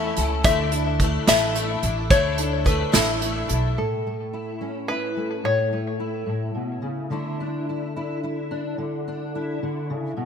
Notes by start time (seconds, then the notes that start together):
Already playing: A3 C#4 E4 A4 E5
0.16 C#2 A3 C#4 E4 A4, closed hi-hat
0.44 D2 D3 A3 D4 E4 A4 E5, kick, closed hi-hat
0.72 D4 E4 A4, closed hi-hat
1.00 A3 D4 E4 A4, kick, closed hi-hat
1.27 A1 D3 A3 D4 E4 A4 E5, snare, closed hi-hat
1.54 A3 D4 E4 A4, closed hi-hat
1.82 A1 D4 E4 A4, closed hi-hat
2.10 D2 D3 A3 D4 E4 A4 C#5, kick, closed hi-hat
2.38 D4 E4 A4, closed hi-hat
2.64 A3 D4 E4 A4 B4, kick, closed hi-hat
2.92 A1 D3 A3 D4 E4 A4, snare, closed hi-hat
3.19 A3 D4 E4 A4, closed hi-hat
3.48 B1 D4 E4 A4, closed hi-hat
3.77 A2 A4
4.07 A3
4.33 E4
4.61 C#4
4.88 E4 B4
5.17 A3
5.44 A2 C#5
5.73 A3
6.00 E4
6.26 A2
6.55 B2
6.82 C#3
7.10 D3 A3 D4 E4
7.40 D4
7.69 E4
7.96 E4
8.23 E4
8.51 D4
8.78 D3
9.08 D4
9.35 E4
9.63 D3
9.90 C#3
10.17 B2